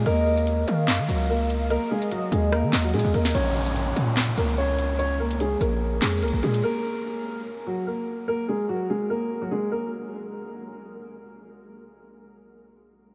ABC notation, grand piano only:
X:1
M:4/4
L:1/16
Q:1/4=146
K:Bbm
V:1 name="Grand piano"
[B,B]8 z2 [G,G]2 [B,B]4 | [B,B]2 [A,A]2 [G,G]2 [A,A]2 [B,B]3 [G,G] [A,A]2 [B,B]2 | [Dd]8 z2 [B,B]2 [Dd]4 | [Dd]2 [B,B]2 [A,A]2 [B,B]4 [A,A]2 [B,B]2 [A,A]2 |
[B,B]8 z2 [G,G]2 [B,B]4 | [B,B]2 [A,A]2 [G,G]2 [A,A]2 [B,B]3 [G,G] [A,A]2 [B,B]2 | z16 | z16 |]